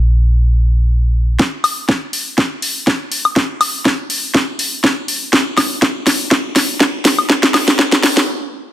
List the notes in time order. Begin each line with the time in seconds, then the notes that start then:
Already playing: A#1
1.39 kick, snare
1.64 open hi-hat, high woodblock
1.89 kick, snare
2.13 open hi-hat
2.38 kick, snare
2.62 open hi-hat
2.87 kick, snare
3.12 open hi-hat
3.25 high woodblock
3.36 kick, snare
3.61 open hi-hat, high woodblock
3.85 kick, snare
4.10 open hi-hat
4.34 kick, snare
4.59 open hi-hat
4.84 kick, snare
5.08 open hi-hat
5.33 kick, snare
5.57 snare, open hi-hat, high woodblock
5.82 kick, snare
6.07 snare, open hi-hat
6.31 kick, snare
6.56 snare, open hi-hat
6.80 kick, snare
7.05 snare, open hi-hat
7.18 high woodblock
7.30 kick, snare
7.43 snare
7.54 snare, open hi-hat, high woodblock
7.68 snare
7.79 kick, snare
7.92 snare
8.03 snare, open hi-hat
8.17 snare